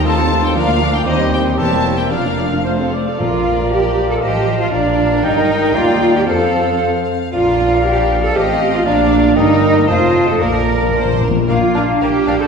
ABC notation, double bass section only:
X:1
M:2/4
L:1/8
Q:1/4=116
K:Bb
V:1 name="Double bass section" clef=bass
E,,2 D,,2 | E,,2 =E,,,2 | F,,,3 z | B,,,4 |
A,,,2 B,,,2 | G,,,2 E,,2 | F,,3 z | B,,,4 |
A,,,2 B,,,2 | G,,,2 F,,,2 | B,,,3 z | B,,, B,,, B,,, B,,, |]